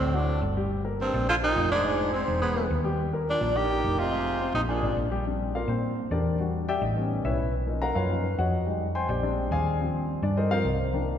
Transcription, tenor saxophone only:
0.00 0.17 C4 medium
0.15 0.43 D4 medium
1.01 1.27 C4 medium
1.29 1.35 F4 medium
1.44 1.69 D#4 loud
1.72 2.11 D4 medium
2.13 2.39 C4 medium
2.41 2.68 B3 medium
3.30 3.58 D4 medium
3.57 4.00 G4 loud
3.99 4.54 F4 medium
4.55 4.61 D#4 medium
4.69 5.09 D4 medium

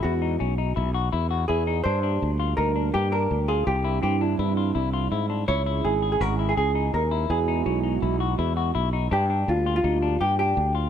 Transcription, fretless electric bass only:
0.04 0.36 E2 loud
0.41 0.72 B1 medium
0.77 1.09 B1 medium
1.13 1.45 E2 medium
1.49 1.81 E2 medium
1.86 2.17 G2 loud
2.22 2.54 D2 medium
2.58 2.90 D2 medium
2.95 3.26 G2 medium
3.31 3.63 D2 medium
3.67 3.99 C2 loud
4.03 4.35 G2 medium
4.39 4.71 G2 medium
4.75 5.07 C2 medium
5.12 5.44 G#2 medium
5.48 5.80 C#2 loud
5.85 6.17 G#1 medium
6.21 6.53 G#1 medium
6.57 6.89 C#2 medium
6.94 7.26 D#2 medium
7.30 7.62 E2 loud
7.66 7.98 B1 medium
8.03 8.35 B1 medium
8.39 8.71 E2 medium
8.75 9.07 B1 medium
9.11 9.44 G2 loud
9.48 9.80 D2 medium
9.84 10.16 D2 loud
10.21 10.53 G2 medium
10.57 10.89 D2 medium

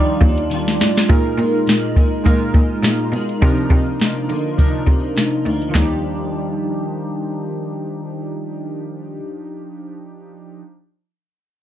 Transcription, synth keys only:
0.00 1.11 G3 medium
0.00 1.09 D#4 medium
0.00 1.10 F4 medium
0.00 1.11 D5 medium
1.08 2.15 G#3 medium
1.08 2.15 D#4 medium
1.08 2.16 F4 medium
1.08 2.16 A#4 medium
2.24 3.31 G#3 medium
2.24 3.31 D#4 medium
2.24 3.32 F4 medium
2.24 3.32 A#4 medium
3.41 4.48 F3 medium
3.41 4.48 D4 medium
3.41 4.49 D#4 medium
3.41 4.49 A#4 medium
4.57 5.64 F3 medium
4.57 5.65 D4 medium
4.57 5.65 D#4 medium
4.57 5.65 A#4 medium
5.71 8.92 F3 medium
5.71 8.96 D4 medium
5.77 8.99 D#4 medium
5.77 9.02 G4 medium

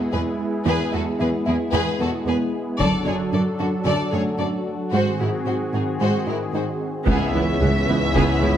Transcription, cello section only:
0.13 0.21 E2 soft
0.67 0.75 E2 medium
0.94 1.02 E2 soft
1.21 1.29 E2 medium
1.47 1.55 E2 soft
1.74 1.82 E2 medium
2.01 2.09 E2 soft
2.27 2.35 E2 soft
2.80 2.88 F#2 medium
3.07 3.15 F#2 soft
3.34 3.42 F#2 soft
3.60 3.68 F#2 soft
3.87 3.95 F#2 medium
4.13 4.21 F#2 soft
4.40 4.48 F#2 soft
4.93 5.01 G#2 soft
5.21 5.29 G#2 soft
5.47 5.55 G#2 soft
5.74 5.82 G#2 soft
6.01 6.09 G#2 soft
6.27 6.35 G#2 soft
6.54 6.62 G#2 soft
7.08 7.16 C#2 medium
7.34 7.42 C#2 soft
7.62 7.70 C#2 soft
7.88 7.96 C#2 soft
8.16 8.24 C#2 medium
8.42 8.50 C#2 soft

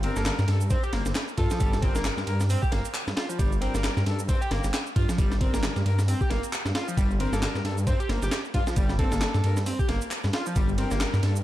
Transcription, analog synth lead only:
0.04 0.15 C4 loud
0.16 0.21 A#3 loud
0.70 0.82 C4 loud
0.83 0.92 G4 loud
0.93 1.03 A#3 medium
1.37 1.48 F4 medium
1.51 1.59 F3 medium
1.60 1.72 G3 medium
1.82 1.94 C4 loud
1.95 2.00 A#3 loud
2.50 2.61 C4 loud
2.62 2.71 G4 loud
2.72 2.82 A#3 medium
3.16 3.27 F4 medium
3.29 3.38 F3 medium
3.39 3.51 G3 medium
3.61 3.73 C4 loud
3.74 3.79 A#3 loud
4.29 4.40 C4 loud
4.41 4.50 G4 loud
4.51 4.61 A#3 medium
4.96 5.06 F4 medium
5.09 5.17 F3 medium
5.18 5.31 G3 medium
5.41 5.52 C4 loud
5.54 5.58 A#3 loud
6.08 6.20 C4 loud
6.21 6.30 G4 loud
6.30 6.40 A#3 medium
6.75 6.85 F4 medium
6.88 6.97 F3 medium
6.97 7.10 G3 medium
7.20 7.31 C4 loud
7.33 7.37 A#3 loud
7.87 7.99 C4 loud
8.00 8.08 G4 loud
8.09 8.20 A#3 medium
8.54 8.64 F4 medium
8.67 8.76 F3 medium
8.77 8.89 G3 medium
8.99 9.11 C4 loud
9.12 9.16 A#3 loud
9.66 9.78 C4 loud
9.79 9.88 G4 loud
9.89 9.99 A#3 medium
10.34 10.44 F4 medium
10.47 10.55 F3 medium
10.56 10.68 G3 medium
10.78 10.90 C4 loud
10.91 10.96 A#3 loud

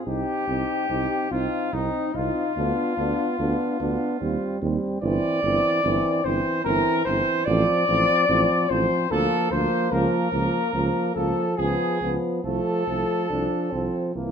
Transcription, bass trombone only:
0.06 0.22 C2 soft
0.48 0.64 C2 soft
0.90 1.06 C2 soft
1.31 1.47 C2 soft
1.73 1.89 C2 soft
2.14 2.30 C2 soft
2.56 2.72 D2 medium
2.97 3.13 D2 soft
3.39 3.55 D2 medium
3.80 3.96 D2 medium
4.21 4.37 D#2 soft
4.62 4.78 D#2 medium
5.02 5.18 G1 medium
5.43 5.59 G1 medium
5.84 6.00 G1 medium
6.24 6.40 G1 medium
6.64 6.80 G1 medium
7.06 7.22 G1 medium
7.47 7.63 A1 medium
7.88 8.04 A1 medium
8.28 8.44 A1 medium
8.70 8.86 A1 medium
9.11 9.27 D2 medium
9.51 9.67 D2 medium
9.91 10.07 C#2 medium
10.32 10.48 C#2 medium
10.73 10.89 C#2 medium
11.16 11.32 C#2 medium
11.58 11.74 C#2 medium
12.01 12.17 C#2 soft
12.44 12.60 C2 medium
12.87 13.03 C2 soft
13.30 13.46 C2 soft
13.72 13.88 C2 soft
14.15 14.31 C2 soft

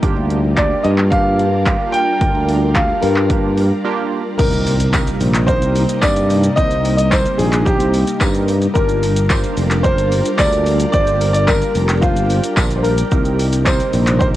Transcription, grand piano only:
0.56 0.85 D5 medium
0.83 0.90 D#5 medium
1.10 1.95 F5 loud
1.92 2.77 G5 loud
2.74 3.03 F5 loud
3.01 4.07 A#4 medium
4.38 5.43 A#4 loud
5.47 5.98 C5 loud
6.01 6.58 D5 loud
6.56 6.95 D#5 loud
6.97 7.10 D#5 loud
7.10 7.39 C5 loud
7.38 7.64 G#4 medium
7.65 8.17 G4 medium
8.74 9.87 A#4 loud
9.83 10.40 C5 loud
10.38 10.89 D5 loud
10.92 11.32 D5 loud
11.33 11.48 D5 loud
11.47 11.98 A#4 loud
12.01 12.53 F4 medium
12.76 12.84 C5 medium
12.83 13.68 A#4 medium
13.65 14.18 C5 medium
14.19 14.25 C5 loud

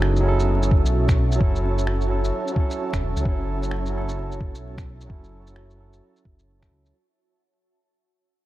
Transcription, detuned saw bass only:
0.00 0.84 F#1 loud
0.85 1.39 B1 medium
2.93 3.14 E1 medium
3.16 3.24 C#2 medium
3.25 4.53 F#1 loud
4.54 5.08 B1 loud
5.10 6.01 F#1 medium
6.25 6.70 F#1 medium
6.71 6.93 C#2 medium

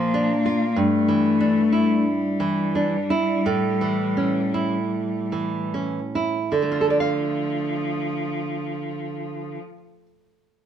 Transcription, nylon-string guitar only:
0.00 0.73 A#2 soft
0.00 0.32 F3 soft
0.00 0.19 F4 soft
0.14 0.64 D4 soft
0.46 0.77 F4 soft
0.76 3.40 G2 soft
1.08 1.60 E3 soft
1.40 1.93 D4 soft
1.72 2.81 E4 soft
2.40 2.95 E3 soft
2.75 3.31 D4 soft
3.10 3.45 E4 soft
3.46 6.48 A2 soft
3.81 4.39 E3 soft
4.17 4.76 C#4 soft
4.54 5.82 E4 soft
5.32 5.98 E3 soft
5.74 6.37 C#4 soft
6.15 6.53 E4 soft
6.52 9.57 D3 soft
6.62 9.68 A3 soft
6.71 9.77 F4 soft
6.81 6.90 A4 soft
6.90 7.00 D5 soft
7.00 10.06 F5 soft

